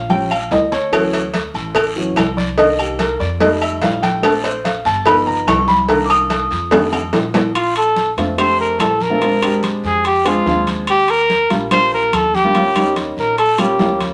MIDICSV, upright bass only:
0, 0, Header, 1, 2, 480
1, 0, Start_track
1, 0, Key_signature, -2, "major"
1, 0, Tempo, 414938
1, 1075, Time_signature, 4, 2, 24, 8
1, 16351, End_track
2, 0, Start_track
2, 0, Title_t, "Upright bass"
2, 0, Program_c, 0, 32
2, 0, Note_on_c, 0, 34, 98
2, 546, Note_off_c, 0, 34, 0
2, 588, Note_on_c, 0, 38, 87
2, 1718, Note_off_c, 0, 38, 0
2, 1785, Note_on_c, 0, 33, 101
2, 2460, Note_off_c, 0, 33, 0
2, 2504, Note_on_c, 0, 36, 100
2, 3633, Note_off_c, 0, 36, 0
2, 3699, Note_on_c, 0, 41, 92
2, 4373, Note_off_c, 0, 41, 0
2, 4410, Note_on_c, 0, 34, 92
2, 5542, Note_off_c, 0, 34, 0
2, 5613, Note_on_c, 0, 31, 94
2, 6287, Note_off_c, 0, 31, 0
2, 6329, Note_on_c, 0, 36, 105
2, 7460, Note_off_c, 0, 36, 0
2, 7525, Note_on_c, 0, 41, 100
2, 8203, Note_off_c, 0, 41, 0
2, 8249, Note_on_c, 0, 34, 96
2, 9383, Note_off_c, 0, 34, 0
2, 9450, Note_on_c, 0, 41, 80
2, 10129, Note_off_c, 0, 41, 0
2, 10173, Note_on_c, 0, 34, 83
2, 11310, Note_off_c, 0, 34, 0
2, 11378, Note_on_c, 0, 41, 85
2, 12057, Note_off_c, 0, 41, 0
2, 12099, Note_on_c, 0, 39, 82
2, 13237, Note_off_c, 0, 39, 0
2, 13304, Note_on_c, 0, 34, 89
2, 13984, Note_off_c, 0, 34, 0
2, 14025, Note_on_c, 0, 39, 87
2, 15163, Note_off_c, 0, 39, 0
2, 15230, Note_on_c, 0, 34, 83
2, 15909, Note_off_c, 0, 34, 0
2, 15952, Note_on_c, 0, 38, 88
2, 16351, Note_off_c, 0, 38, 0
2, 16351, End_track
0, 0, End_of_file